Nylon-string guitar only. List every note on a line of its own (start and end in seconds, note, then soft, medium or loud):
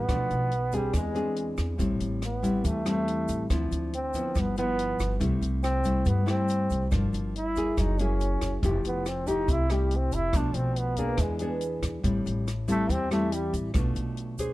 0.08 0.92 B2 medium
0.08 0.51 F3 medium
0.08 0.51 A3 medium
0.08 0.52 D4 medium
0.73 1.12 C4 medium
0.73 1.12 D4 medium
0.73 1.12 G#4 medium
0.94 1.77 E3 medium
1.15 1.76 C4 medium
1.15 1.76 D4 medium
1.15 1.76 G#4 medium
1.78 2.62 A2 medium
1.78 2.22 G3 medium
1.78 2.22 C4 soft
1.78 2.22 E4 medium
2.42 2.82 G3 medium
2.42 2.82 C4 medium
2.42 2.83 E4 medium
2.64 3.48 E3 medium
2.85 3.46 G3 medium
2.85 3.47 C4 medium
2.85 3.47 E4 medium
3.50 4.33 D3 medium
3.50 3.93 F3 medium
3.50 3.93 C4 soft
3.50 3.93 E4 medium
4.15 4.54 F3 medium
4.15 4.54 B3 medium
4.15 4.54 E4 medium
4.36 5.19 G2 medium
4.57 5.18 F3 medium
4.57 5.18 B3 medium
4.57 5.18 E4 medium
5.20 6.03 C3 medium
5.20 5.81 G3 medium
5.20 5.81 A3 medium
5.20 5.81 E4 medium
5.84 6.24 G3 medium
5.84 6.24 A3 medium
5.84 6.24 E4 medium
6.05 6.89 G2 medium
6.26 6.87 G3 medium
6.26 6.88 A3 medium
6.26 6.88 E4 medium
6.91 7.75 G2 medium
6.91 7.34 F3 medium
6.91 7.34 A#3 medium
6.91 7.34 D4 medium
7.56 7.95 A#3 medium
7.56 7.95 E4 medium
7.56 7.96 G#4 medium
7.79 8.61 F#3 medium
8.00 8.60 A#3 medium
8.00 8.60 E4 medium
8.00 8.60 G#4 medium
8.64 9.46 F3 medium
8.64 9.06 A3 medium
8.64 9.06 E4 medium
8.64 9.06 G4 medium
9.26 9.66 A3 medium
9.26 9.66 E4 medium
9.26 9.66 G4 medium
9.48 10.31 C3 medium
9.70 10.30 A3 medium
9.70 10.30 E4 medium
9.70 10.30 G4 medium
10.34 11.17 B2 medium
10.34 10.94 F3 medium
10.34 10.94 A3 medium
10.34 10.95 D4 medium
10.98 11.37 B3 medium
10.98 11.37 D4 medium
10.98 11.37 G#4 medium
11.19 12.02 E3 medium
11.40 12.01 B3 medium
11.40 12.01 D4 medium
11.40 12.01 G#4 medium
12.03 12.87 A2 medium
12.03 12.46 G3 medium
12.03 12.46 C4 medium
12.03 12.46 E4 medium
12.68 13.07 G3 medium
12.68 13.07 C4 medium
12.68 13.07 E4 medium
12.89 13.72 E3 medium
13.11 13.71 G3 medium
13.11 13.71 C4 medium
13.11 13.71 E4 medium
13.74 14.53 B2 medium
13.74 14.35 A3 medium
13.74 14.35 D4 medium
13.74 14.35 F4 medium
14.39 14.53 D4 medium
14.39 14.53 G#4 medium
14.39 14.53 C5 medium